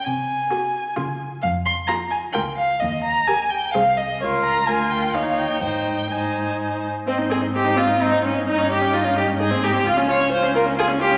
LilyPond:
<<
  \new Staff \with { instrumentName = "Violin" } { \time 3/4 \key aes \major \tempo 4 = 129 aes''2~ aes''8 r8 | f''8 c'''8 bes''8 aes''8 g''8 f''8 | ees''8 bes''8 aes''8 g''8 f''8 ees''8 | des''8 bes''8 aes''8 g''8 f''8 g''8 |
g''4 aes''4. r8 | ees''16 c''16 ees''16 c''16 ees''16 c''16 ees''16 c''16 ees''16 c''16 ees''16 c''16 | ees''16 des''16 ees''16 des''16 ees''16 des''16 ees''16 des''16 ees''16 c''16 ees''16 c''16 | f''16 aes''16 f''16 aes''16 f''16 aes''16 f''16 aes''16 f''16 aes''16 f''16 aes''16 | }
  \new Staff \with { instrumentName = "Violin" } { \time 3/4 \key aes \major r4 aes'4 aes'4 | r4 aes'4 bes'4 | r4 bes'4 c''4 | bes'4 bes'8 bes'8 des''4 |
c''4 c''4. r8 | c'8 aes'8 g'8 f'8 ees'8 des'8 | ees'8 g'8 f'8 g'8 aes'8 g'8 | f'8 des''8 c''8 bes'8 aes'8 g'8 | }
  \new Staff \with { instrumentName = "Viola" } { \time 3/4 \key aes \major r4 ges'8. r16 f'8. r16 | r4 f'8. r16 f'8. r16 | r4 g'8. r16 aes'8. r16 | f'4 f'4 ees'4 |
ees'4 ees'4. r8 | c'16 ees'16 c'16 ees'16 c'16 ees'16 c'16 ees'16 c'16 ees'16 c'16 ees'16 | ees'16 des'16 ees'16 des'16 ees'16 des'16 ees'16 des'16 ees'16 c'16 ees'16 c'16 | f'16 des'16 f'16 des'16 f'16 des'16 f'16 des'16 f'16 des'16 f'16 des'16 | }
  \new Staff \with { instrumentName = "Cello" } { \clef bass \time 3/4 \key aes \major c4 r4 des4 | f,4 r4 des,4 | ees,4 r4 c,4 | des,4 d,4 ees,4 |
aes,2~ aes,8 r8 | aes,2. | g,2 aes,4 | des,2. | }
>>